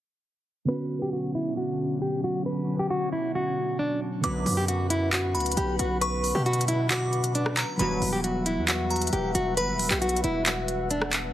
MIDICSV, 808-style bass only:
0, 0, Header, 1, 2, 480
1, 0, Start_track
1, 0, Key_signature, 2, "minor"
1, 0, Tempo, 444444
1, 738, Time_signature, 4, 2, 24, 8
1, 12239, End_track
2, 0, Start_track
2, 0, Title_t, "808-style bass"
2, 0, Program_c, 0, 38
2, 4578, Note_on_c, 0, 35, 117
2, 4808, Note_off_c, 0, 35, 0
2, 4817, Note_on_c, 0, 42, 111
2, 5777, Note_on_c, 0, 38, 99
2, 5793, Note_off_c, 0, 42, 0
2, 6005, Note_off_c, 0, 38, 0
2, 6017, Note_on_c, 0, 35, 112
2, 6248, Note_off_c, 0, 35, 0
2, 6257, Note_on_c, 0, 35, 108
2, 6833, Note_off_c, 0, 35, 0
2, 6857, Note_on_c, 0, 47, 100
2, 8254, Note_off_c, 0, 47, 0
2, 8417, Note_on_c, 0, 28, 118
2, 8648, Note_off_c, 0, 28, 0
2, 8658, Note_on_c, 0, 28, 110
2, 9258, Note_on_c, 0, 40, 98
2, 9274, Note_off_c, 0, 28, 0
2, 9828, Note_off_c, 0, 40, 0
2, 9858, Note_on_c, 0, 28, 112
2, 10088, Note_off_c, 0, 28, 0
2, 10099, Note_on_c, 0, 28, 112
2, 10338, Note_on_c, 0, 31, 106
2, 10355, Note_off_c, 0, 28, 0
2, 10518, Note_on_c, 0, 28, 103
2, 10534, Note_off_c, 0, 31, 0
2, 10689, Note_off_c, 0, 28, 0
2, 10698, Note_on_c, 0, 35, 100
2, 11043, Note_off_c, 0, 35, 0
2, 11058, Note_on_c, 0, 28, 106
2, 12214, Note_off_c, 0, 28, 0
2, 12239, End_track
0, 0, End_of_file